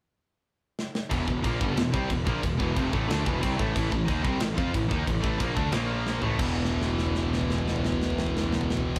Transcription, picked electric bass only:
1.11 1.26 E1 medium
1.28 1.43 E1 medium
1.45 1.59 A#1 medium
1.61 1.75 G1 medium
1.76 1.91 E1 medium
1.94 2.09 C2 medium
2.10 2.25 E1 medium
2.27 2.42 A#1 loud
2.44 2.58 E1 medium
2.60 2.75 E1 medium
2.76 2.91 F1 loud
2.93 3.08 A1 medium
3.09 3.24 D2 medium
3.26 3.41 E1 medium
3.43 3.58 C2 medium
3.60 3.74 A1 medium
3.76 3.91 A1 loud
3.92 4.07 A1 medium
4.08 4.24 D#2 loud
4.24 4.40 C2 medium
4.41 4.56 A1 medium
4.58 4.73 F2 medium
4.74 4.89 A1 medium
4.91 5.06 D#2 loud
5.08 5.23 A1 medium
5.24 5.39 A1 medium
5.40 5.55 A#1 loud
5.57 5.71 D2 medium
5.72 6.18 A#1 medium
6.22 6.38 A1 medium
6.39 8.98 E1 medium

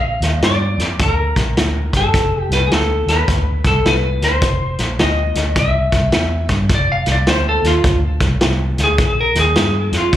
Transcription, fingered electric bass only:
0.00 0.18 A#1 medium
0.20 0.40 D#2 medium
0.42 0.75 G2 medium
0.78 0.97 F2 medium
0.99 1.32 D2 medium
1.36 1.55 A#1 medium
1.56 1.89 D2 medium
1.93 2.12 G1 medium
2.14 2.46 F1 medium
2.49 2.68 C2 medium
2.70 3.03 D2 medium
3.06 3.25 D#2 medium
3.28 3.61 D2 medium
3.65 3.83 C2 medium
3.85 4.18 C2 medium
4.22 4.40 D2 medium
4.42 4.75 F1 medium
4.79 4.97 A#1 medium
4.99 5.32 D2 medium
5.35 5.54 D2 medium
5.55 5.89 C2 medium
5.92 6.11 C2 medium
6.13 6.46 E2 medium
6.49 6.68 G2 medium
6.69 7.03 F1 medium
7.07 7.25 C2 medium
7.27 7.60 D2 medium
7.63 7.82 D#2 medium
7.84 8.17 D2 medium
8.21 8.39 C2 medium
8.41 8.74 C2 medium
8.78 8.97 D2 medium
8.98 9.32 A#1 medium
9.35 9.54 D#2 medium
9.56 9.89 G2 medium
9.92 10.11 F2 medium
10.13 10.16 D2 medium

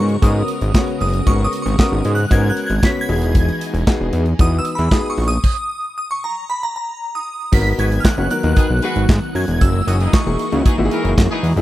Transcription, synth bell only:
0.00 0.24 C#6 medium
0.23 1.00 D#6 medium
1.01 1.28 D#6 medium
1.27 1.45 C#6 medium
1.44 1.62 D#6 loud
1.62 1.80 C#6 medium
1.79 2.12 D#6 medium
2.15 2.32 F#6 loud
2.32 2.48 G#6 loud
2.50 2.67 F#6 medium
2.66 2.84 G#6 medium
2.84 3.02 B6 loud
3.01 3.49 G#6 loud
4.41 4.48 D#6 loud
4.59 4.76 E6 loud
4.75 4.93 B5 medium
4.92 5.10 D#6 loud
5.10 5.27 C#6 medium
5.28 5.76 D#6 loud
5.98 6.10 D#6 medium
6.11 6.23 C#6 medium
6.24 6.50 A#5 medium
6.50 6.62 B5 medium
6.63 6.75 A#5 medium
6.76 7.16 A#5 medium
7.15 7.51 D#6 medium
7.54 7.78 B6 loud
7.79 7.99 G#6 loud
8.00 8.06 F6 medium
8.05 8.29 F#6 loud
8.31 9.39 F#6 medium
9.36 9.62 G#6 loud
9.61 9.86 E6 loud
9.88 10.14 D#6 medium
10.13 11.40 C#6 medium

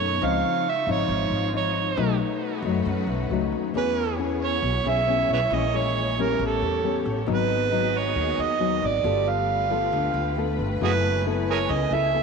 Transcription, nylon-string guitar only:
0.00 0.19 B2 medium
0.00 0.20 A3 medium
0.00 0.20 C#4 medium
0.00 0.20 D#4 medium
0.22 1.08 C#3 medium
0.22 0.65 F3 medium
0.22 0.66 C4 medium
0.22 0.66 D#4 medium
0.87 1.50 F3 medium
0.87 1.51 D#4 medium
1.10 1.96 G#2 medium
1.53 1.94 F3 medium
1.53 1.94 D#4 medium
1.97 2.83 B2 medium
1.97 2.60 F#3 medium
1.97 2.60 A3 medium
1.97 2.60 D#4 medium
2.65 3.27 F#3 medium
2.65 3.27 A3 medium
2.65 3.28 D#4 medium
2.87 3.72 F#2 medium
3.31 3.71 F#3 medium
3.31 3.72 A3 medium
3.31 3.72 D#4 medium
3.75 4.61 E3 medium
3.75 4.03 B3 medium
3.75 4.03 C#4 medium
3.75 4.04 G#4 medium
4.18 4.62 B3 medium
4.18 4.63 C#4 medium
4.18 4.63 G#4 medium
4.63 5.49 B2 medium
4.86 5.04 B3 medium
4.86 5.04 C#4 medium
4.86 5.04 G#4 medium
5.07 5.35 B3 medium
5.07 5.36 C#4 medium
5.07 5.36 G#4 medium
5.51 6.37 A#2 medium
5.51 5.64 E3 medium
5.51 5.65 G#3 medium
5.51 5.65 C#4 medium
5.74 6.14 E3 medium
5.74 6.14 G#3 medium
5.74 6.15 C#4 medium
6.18 6.81 G3 medium
6.18 6.81 B3 medium
6.18 6.81 C#4 medium
6.40 7.26 A2 medium
6.84 7.26 G3 medium
6.84 7.26 B3 medium
6.84 7.26 C#4 medium
7.26 8.13 G#2 medium
7.26 7.68 F#3 medium
7.26 7.68 B3 medium
7.26 7.68 D#4 medium
7.72 8.57 F#3 medium
7.72 8.57 B3 medium
7.72 8.57 D#4 medium
8.16 9.02 D#3 medium
8.60 8.88 F#3 medium
8.60 8.89 B3 medium
8.60 8.89 D#4 medium
9.04 9.90 G3 medium
9.04 9.67 B3 medium
9.04 9.67 F4 medium
9.04 9.67 A4 medium
9.70 10.33 B3 medium
9.70 10.33 F4 medium
9.70 10.34 A4 medium
9.93 10.79 D3 medium
10.37 10.67 B3 medium
10.37 10.67 F4 medium
10.37 10.67 A4 medium
10.81 11.67 F#3 medium
10.81 11.22 B3 medium
10.81 11.22 E4 medium
10.81 11.22 A4 medium
11.26 11.88 B3 medium
11.26 11.89 E4 medium
11.26 11.89 A4 medium
11.69 12.23 C#3 medium
11.92 12.10 B3 medium
11.92 12.10 E4 medium
11.92 12.11 A4 medium
12.14 12.23 B3 medium
12.14 12.23 E4 medium
12.14 12.23 A4 medium

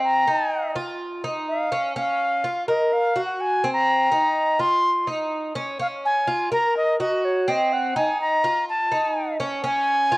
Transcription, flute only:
0.04 0.72 A#5 loud
1.49 1.93 F5 medium
1.97 2.64 F5 medium
2.69 2.94 D#5 medium
2.93 3.24 F5 loud
3.25 3.42 F#5 medium
3.41 3.72 G#5 medium
3.73 4.62 A#5 loud
4.61 5.08 C6 loud
5.81 5.87 F5 medium
6.05 6.49 G#5 loud
6.53 6.75 A#5 loud
6.77 6.99 D#5 loud
7.00 7.26 D#5 medium
7.25 7.51 C#5 medium
7.50 7.74 D#5 medium
7.73 7.99 F#5 medium
7.97 8.21 G#5 medium
8.21 8.65 A#5 loud
8.69 9.36 A5 medium
9.66 10.18 G#5 loud

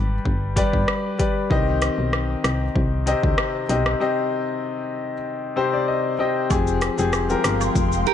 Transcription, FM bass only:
0.00 0.20 G#1 medium
0.25 0.65 G1 loud
0.73 0.85 G1 medium
1.51 1.90 C2 loud
1.98 2.36 B1 medium
2.44 2.70 C2 medium
2.76 3.15 C2 loud
3.23 3.36 D2 medium
3.69 3.95 B1 loud
6.51 6.90 F1 loud
6.99 7.36 F1 medium
7.44 7.70 G1 loud
7.76 8.14 F1 loud

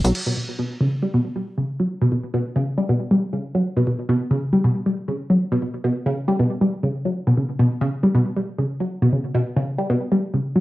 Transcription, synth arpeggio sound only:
0.04 0.10 F#3 medium
0.26 0.32 B2 medium
0.37 0.46 B2 medium
0.59 0.65 B2 loud
0.81 0.87 C#3 loud
1.02 1.09 G3 medium
1.14 1.20 B2 loud
1.36 1.45 G3 medium
1.58 1.64 C#3 medium
1.80 1.85 F#3 medium
2.02 2.07 B2 loud
2.12 2.22 B2 medium
2.34 2.40 B2 loud
2.56 2.62 C#3 loud
2.78 2.84 G3 medium
2.89 2.95 B2 medium
3.11 3.20 G3 medium
3.33 3.39 C#3 medium
3.55 3.61 F#3 medium
3.77 3.82 B2 loud
3.87 3.97 B2 medium
4.09 4.15 B2 loud
4.31 4.37 C#3 loud
4.53 4.59 G3 medium
4.64 4.70 B2 medium
4.86 4.95 G3 medium
5.08 5.14 C#3 medium
5.30 5.36 F#3 medium
5.52 5.58 B2 loud
5.62 5.72 B2 medium
5.84 5.91 B2 loud
6.06 6.13 C#3 loud
6.28 6.34 G3 medium
6.39 6.45 B2 loud
6.61 6.70 G3 medium
6.83 6.89 C#3 medium
7.05 7.11 F#3 medium
7.27 7.33 B2 loud
7.37 7.41 C#3 medium
7.59 7.66 B2 loud
7.81 7.88 C#3 loud
8.03 8.10 G3 medium
8.15 8.20 B2 loud
8.36 8.45 G3 medium
8.58 8.64 C#3 medium
8.80 8.86 F#3 medium
9.02 9.08 B2 loud
9.13 9.17 C#3 medium
9.35 9.41 B2 loud
9.57 9.63 C#3 loud
9.78 9.85 G3 medium
9.90 9.96 B2 loud
10.12 10.20 G3 medium
10.34 10.39 C#3 medium
10.56 10.60 F#3 medium

